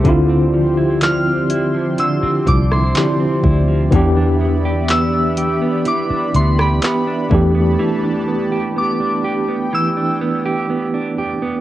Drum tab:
HH |x---x-x-x-x-x---|x---x-x-x-x-x---|----------------|
CP |----x-------x---|----x-------x---|----------------|
SD |-----------r----|-----------r----|----------------|
BD |o---------o---o-|o-------------o-|----------------|